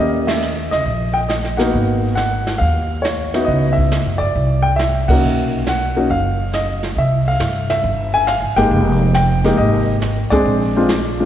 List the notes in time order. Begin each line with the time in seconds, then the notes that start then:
Already playing: A#3 C#4 E4 G4
0.00 D#2 D#5
0.27 E5, snare, ride
0.42 hi-hat pedal
0.71 C#2 D#5, snare
0.86 A#1, brush sweep, kick
1.14 G5
1.29 D#5, snare, hi-hat pedal
1.45 snare
1.57 A#3 B3 D#4 F#4 F#5, snare
1.73 G#1, brush sweep, kick
2.15 F#5, snare, hi-hat pedal
2.47 snare
2.58 D#2 F5, brush sweep, kick
3.02 C#5, snare, hi-hat pedal
3.34 B3 D#4 E4 F#4, snare
3.45 C#2 D#5, brush sweep, kick
3.73 E5
3.78 kick
3.91 snare, hi-hat pedal
4.06 F#2
4.18 G2 D5
4.36 C2, brush sweep, kick
4.62 G5
4.76 E5, snare, hi-hat pedal
5.08 A#3 C#4 D#4 F#4 F#5, kick, crash
5.23 B1, brush sweep
5.66 F#5, snare, hi-hat pedal
5.96 A#3 C#4 D#4 F#4
6.10 F#1 F5, brush sweep, kick
6.53 D#5, snare, hi-hat pedal
6.83 snare
6.97 C2 E5, brush sweep, kick
7.28 F5
7.40 G2, snare, hi-hat pedal
7.70 E5, snare
7.84 G1, brush sweep, kick
8.14 G#5
8.27 F5, snare, hi-hat pedal
8.42 G#1
8.56 G1 G#3 A#3 D#4 G4 G5, snare
8.71 F1, brush sweep, kick
9.14 G5, snare, hi-hat pedal
9.44 G#3 A#3 D#4 G4, snare
9.57 G#1 D#5, brush sweep, kick
10.01 snare, hi-hat pedal
10.30 G#3 C4 D4 G#4 D5, muted upright bass stroke, kick, snare
10.45 A#1, brush sweep, kick
10.77 G#3 C4 D4 F4
10.88 snare, hi-hat pedal
11.20 G#3 C4 D4 F4